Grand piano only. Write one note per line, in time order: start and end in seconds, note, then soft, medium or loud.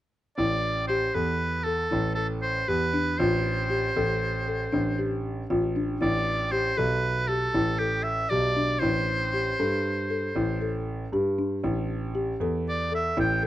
0.38 1.06 A1 medium
1.15 1.82 E2 medium
1.92 2.60 A1 medium
2.69 3.14 E2 medium
3.19 3.87 A1 medium
3.96 4.64 A1 medium
4.73 5.41 A1 medium
5.50 5.95 A1 medium
6.02 6.69 A1 medium
6.78 7.46 B1 medium
7.54 8.22 A1 medium
8.32 8.77 B1 medium
8.82 9.50 A1 medium
9.60 10.27 G2 medium
10.36 11.03 A1 medium
11.12 11.58 G2 medium
11.64 12.31 A1 medium
12.40 13.08 E2 medium
13.17 13.47 A1 medium